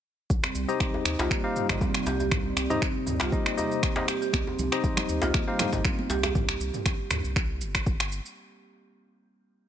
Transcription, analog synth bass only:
0, 0, Header, 1, 2, 480
1, 0, Start_track
1, 0, Key_signature, -3, "minor"
1, 0, Tempo, 504202
1, 286, Time_signature, 4, 2, 24, 8
1, 9222, End_track
2, 0, Start_track
2, 0, Title_t, "Analog synth bass"
2, 0, Program_c, 0, 38
2, 286, Note_on_c, 0, 36, 99
2, 385, Note_off_c, 0, 36, 0
2, 524, Note_on_c, 0, 36, 92
2, 624, Note_off_c, 0, 36, 0
2, 763, Note_on_c, 0, 34, 96
2, 864, Note_off_c, 0, 34, 0
2, 1003, Note_on_c, 0, 39, 78
2, 1104, Note_off_c, 0, 39, 0
2, 1134, Note_on_c, 0, 36, 94
2, 1221, Note_off_c, 0, 36, 0
2, 1613, Note_on_c, 0, 31, 82
2, 1700, Note_off_c, 0, 31, 0
2, 1963, Note_on_c, 0, 36, 77
2, 2404, Note_off_c, 0, 36, 0
2, 2441, Note_on_c, 0, 36, 92
2, 2543, Note_off_c, 0, 36, 0
2, 2684, Note_on_c, 0, 34, 91
2, 2784, Note_off_c, 0, 34, 0
2, 2922, Note_on_c, 0, 39, 84
2, 3023, Note_off_c, 0, 39, 0
2, 3051, Note_on_c, 0, 36, 96
2, 3139, Note_off_c, 0, 36, 0
2, 4124, Note_on_c, 0, 36, 101
2, 4224, Note_off_c, 0, 36, 0
2, 4366, Note_on_c, 0, 36, 97
2, 4466, Note_off_c, 0, 36, 0
2, 4603, Note_on_c, 0, 34, 90
2, 4704, Note_off_c, 0, 34, 0
2, 4845, Note_on_c, 0, 39, 85
2, 4945, Note_off_c, 0, 39, 0
2, 4976, Note_on_c, 0, 36, 97
2, 5061, Note_off_c, 0, 36, 0
2, 5455, Note_on_c, 0, 31, 85
2, 5541, Note_off_c, 0, 31, 0
2, 5806, Note_on_c, 0, 36, 80
2, 6246, Note_off_c, 0, 36, 0
2, 6286, Note_on_c, 0, 36, 95
2, 6385, Note_off_c, 0, 36, 0
2, 6526, Note_on_c, 0, 34, 90
2, 6626, Note_off_c, 0, 34, 0
2, 6765, Note_on_c, 0, 39, 82
2, 6865, Note_off_c, 0, 39, 0
2, 6893, Note_on_c, 0, 36, 93
2, 7245, Note_on_c, 0, 31, 95
2, 7260, Note_off_c, 0, 36, 0
2, 7808, Note_off_c, 0, 31, 0
2, 9222, End_track
0, 0, End_of_file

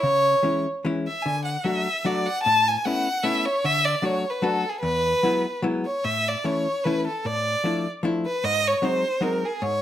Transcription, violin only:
0, 0, Header, 1, 2, 480
1, 0, Start_track
1, 0, Key_signature, 3, "major"
1, 0, Tempo, 404313
1, 36, Time_signature, 3, 2, 24, 8
1, 2916, Tempo, 397614
1, 11804, End_track
2, 0, Start_track
2, 0, Title_t, "Violin"
2, 0, Program_c, 0, 40
2, 0, Note_on_c, 0, 73, 104
2, 743, Note_off_c, 0, 73, 0
2, 1270, Note_on_c, 0, 76, 81
2, 1456, Note_on_c, 0, 80, 104
2, 1473, Note_off_c, 0, 76, 0
2, 1712, Note_off_c, 0, 80, 0
2, 1719, Note_on_c, 0, 78, 74
2, 1947, Note_on_c, 0, 76, 90
2, 1965, Note_off_c, 0, 78, 0
2, 2440, Note_on_c, 0, 74, 82
2, 2458, Note_off_c, 0, 76, 0
2, 2685, Note_on_c, 0, 78, 95
2, 2703, Note_off_c, 0, 74, 0
2, 2879, Note_off_c, 0, 78, 0
2, 2886, Note_on_c, 0, 81, 127
2, 3186, Note_on_c, 0, 80, 99
2, 3204, Note_off_c, 0, 81, 0
2, 3389, Note_on_c, 0, 78, 100
2, 3408, Note_off_c, 0, 80, 0
2, 3854, Note_on_c, 0, 76, 102
2, 3872, Note_off_c, 0, 78, 0
2, 4119, Note_on_c, 0, 73, 100
2, 4137, Note_off_c, 0, 76, 0
2, 4355, Note_on_c, 0, 76, 124
2, 4373, Note_off_c, 0, 73, 0
2, 4593, Note_on_c, 0, 74, 98
2, 4611, Note_off_c, 0, 76, 0
2, 4837, Note_on_c, 0, 73, 93
2, 4855, Note_off_c, 0, 74, 0
2, 5141, Note_on_c, 0, 71, 77
2, 5159, Note_off_c, 0, 73, 0
2, 5303, Note_on_c, 0, 69, 92
2, 5321, Note_off_c, 0, 71, 0
2, 5614, Note_on_c, 0, 68, 67
2, 5632, Note_off_c, 0, 69, 0
2, 5741, Note_off_c, 0, 68, 0
2, 5748, Note_on_c, 0, 71, 108
2, 6682, Note_off_c, 0, 71, 0
2, 7016, Note_on_c, 0, 73, 77
2, 7244, Note_on_c, 0, 76, 98
2, 7262, Note_off_c, 0, 73, 0
2, 7531, Note_on_c, 0, 74, 79
2, 7550, Note_off_c, 0, 76, 0
2, 7743, Note_on_c, 0, 73, 81
2, 7761, Note_off_c, 0, 74, 0
2, 8211, Note_on_c, 0, 71, 83
2, 8229, Note_off_c, 0, 73, 0
2, 8470, Note_off_c, 0, 71, 0
2, 8484, Note_on_c, 0, 69, 77
2, 8717, Note_on_c, 0, 74, 95
2, 8735, Note_off_c, 0, 69, 0
2, 9446, Note_off_c, 0, 74, 0
2, 9920, Note_on_c, 0, 71, 90
2, 10144, Note_on_c, 0, 75, 115
2, 10162, Note_off_c, 0, 71, 0
2, 10426, Note_on_c, 0, 73, 92
2, 10444, Note_off_c, 0, 75, 0
2, 10631, Note_on_c, 0, 72, 92
2, 10649, Note_off_c, 0, 73, 0
2, 11093, Note_on_c, 0, 70, 84
2, 11111, Note_off_c, 0, 72, 0
2, 11363, Note_on_c, 0, 68, 82
2, 11381, Note_off_c, 0, 70, 0
2, 11565, Note_on_c, 0, 73, 104
2, 11583, Note_off_c, 0, 68, 0
2, 11804, Note_off_c, 0, 73, 0
2, 11804, End_track
0, 0, End_of_file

